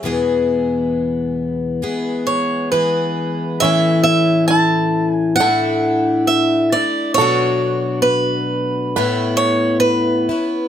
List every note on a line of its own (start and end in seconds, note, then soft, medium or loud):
0.00 1.82 E2 medium
0.00 1.82 B2 medium
0.00 2.68 E5 medium
0.05 1.81 E3 medium
0.05 1.82 G#3 medium
0.05 1.82 B3 medium
0.05 1.82 G#4 medium
1.82 2.71 E3 medium
1.82 2.71 G#3 medium
1.82 2.72 B3 medium
1.82 2.72 G#4 medium
2.27 2.68 C#5 medium
2.72 3.61 E3 medium
2.72 3.61 G#3 medium
2.72 3.62 B3 medium
2.72 3.62 G#4 medium
2.72 3.64 B4 medium
3.60 5.38 A2 medium
3.60 5.40 E3 medium
3.60 5.40 A3 medium
3.60 4.50 C#4 medium
3.60 5.40 C#4 medium
3.60 4.02 E5 loud
3.65 5.39 E4 medium
4.03 4.46 E5 medium
4.48 5.36 E4 medium
4.48 5.11 A5 medium
5.11 5.35 G#5 medium
5.36 6.73 A2 medium
5.36 6.23 F#5 medium
5.40 6.74 D3 medium
5.40 6.74 A3 medium
5.40 6.74 D4 medium
5.40 6.73 E4 medium
5.40 7.17 A4 medium
6.27 6.74 E5 medium
6.72 7.19 A3 soft
6.72 7.19 D4 soft
6.72 7.18 E4 soft
6.72 7.14 D5 medium
7.14 8.96 B2 medium
7.14 8.96 A4 loud
7.14 8.01 C#5 medium
7.19 8.96 F#3 medium
7.19 8.95 A3 medium
7.19 8.97 D4 medium
7.19 8.98 F#4 medium
8.02 9.36 B4 medium
8.96 10.30 A2 medium
8.96 10.30 A3 medium
8.96 10.30 B3 medium
8.96 10.30 C#4 medium
8.96 10.28 E4 medium
8.96 10.68 B4 medium
9.37 9.79 C#5 medium
9.80 10.68 B4 medium
10.29 10.68 B3 soft
10.29 10.68 C#4 soft
10.29 10.68 E4 soft